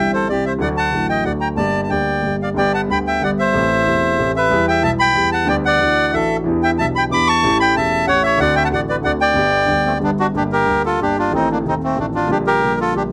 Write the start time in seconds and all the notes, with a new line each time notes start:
Already playing: G1 G2 E3 G3 C4 E5 G5
0.00 G4
0.13 A4 C5
0.27 C2 C3 E3 G3 C4 G4 D5
0.45 C5 E5
0.58 D2 D3 F#3 A3 F#5
0.62 F#4 D5
0.77 F#5 A5
0.91 A1 A2 D3 F#3 A3 F#4
1.09 D#5 G5
1.23 D2 D3 F#3 A3 F#4 D5 F#5
1.40 G5 A#5
1.55 G1 G2 D3 G3 A#3 D5 A5
1.59 G4
1.84 A5
1.88 D2 D3 G3 A#3 G4 D5 G5
2.21 G1 G2 D3 G3 A#3
2.25 G4
2.42 D5 F5
2.54 G1 G2 D3 G3 B3 D5 G5
2.59 G4
2.74 F#5 A5
2.88 D2 D3 G3 B3 G4 B5
2.92 G5
3.07 E5 G5
3.20 G1 G2 D3 G3 B3 G4 D5 F#5
3.39 C5 E5
3.53 A1 A2 E3 A3 C4 G4
3.85 E1 E2 E3 A3 C4 G4
4.17 A1 A2 E3 A3 C4 G4
4.36 B4 E5
4.50 E2 E3 G3 B3 G4
4.68 E5 G5
4.81 B1 B2 E3 G3 B3 A5
4.85 G4 E5
4.99 G5 B5
5.15 E2 E3 G3 B3 G4
5.32 F#5 A5
5.46 D2 D3 G3 B3 G4 D5 G5
5.65 D5 F#5
5.78 D2 D3 E3 A3 D4
5.82 F#4
6.11 A1 A2 E3 A3 D4 E5
6.15 F#4 A4
6.44 E2 E3 B3 D4 G4
6.63 E5 G5
6.77 B1 B2 E3 B3 D4 G4 E5 A5
6.95 G5 B5
7.09 E2 E3 B3 D4 G4 D6
7.14 B5
7.27 A5 C#6
7.42 A1 A2 E3 A3 C#4
7.46 G4
7.60 G5 B5
7.73 E1 E2 E3 A3 C#4 G4 A5
7.77 E5
8.05 A1 A2 E3 A3 C#4 G4 F#5
8.09 C#5
8.23 C#5 E5
8.37 D2 D3 A3 C4 F#4 D5 F#5
8.56 E5 G5
8.64 F#5 A5
8.69 A1 A2 D3 A3 C4 F#5
8.73 F#4 D5
8.89 B4 D5
9.02 D2 D3 A3 C4 F#4 D5 F#5
9.21 D5 G5
9.33 G1 G2 D3 G3 B3
9.37 G4
9.66 D2 D3 G3 B3
9.70 G4
9.86 A3 C4
9.99 G1 G2 D3 G3 B3 G4
10.03 B3 D4
10.20 D4 F#4
10.33 G1 G2 D3 G3 A#3 D4 G4
10.52 G4 A#4
10.65 D2 D3 G3 A#3
10.69 G4
10.86 F4 A4
10.98 G1 G2 D3 G3 A#3 G4
11.02 D4 G4
11.18 D4 F4
11.30 A1 A2 D#3 A3 C4
11.34 D#4 A4
11.51 A#3 D4
11.63 D#1 D#2 D#3 A3 C4
11.67 C4 D#4 A4
11.83 A3 C4
11.95 A1 A2 D#3 A3 C4
11.99 D4 A4
12.14 D4 F4
12.27 A#1 A#2 D3 G3 A#3 D4 G4
12.31 G4
12.47 G4 A#4
12.60 A#1 A#2 D3 G3 A#3 G4
12.80 F4 A4
12.92 A#1 A#2 D3 G3 A#3
12.96 D4 G4